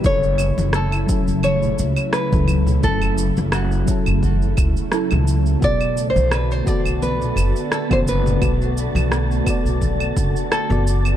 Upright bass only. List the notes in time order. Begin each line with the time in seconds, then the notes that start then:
0.04 F#1
0.58 F#1
1.28 F#1
1.79 C#2
2.33 C#2
2.84 F#1
3.38 F#1
4.08 F#1
4.58 C#2
5.12 C#2
5.62 B1
6.16 B1
6.86 B1
7.36 F#1
7.91 F#1
8.42 B1
8.95 B1
9.65 B1
10.17 F#1
10.70 F#1